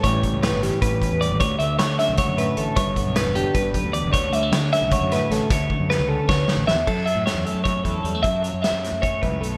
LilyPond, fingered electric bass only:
\new Staff \with { instrumentName = "Fingered electric bass" } { \clef bass \time 7/8 \key d \major \tempo 4 = 154 a,,8 r16 cis,8 g,,8 r16 a,,8 r16 e,8 a,,16 | d,8 d,8 d8. cis,8 fis,8 r16 a,,16 r16 | g,,8 r16 b,,8 e,,8 r16 g,,8 r16 d,8 g,,16 | d,8 d,8 d8. cis,8 fis,8 r16 a,,16 r16 |
d,8 r16 fis,8 cis,8 r16 d,8 r16 a,,8 e,16 | fis,8 r16 a,16 r16 e,16 r16 fis,8 r16 e,8 e,8 | fis,8. fis,16 r16 fis,8 fis,8. cis,8 b,,8 | }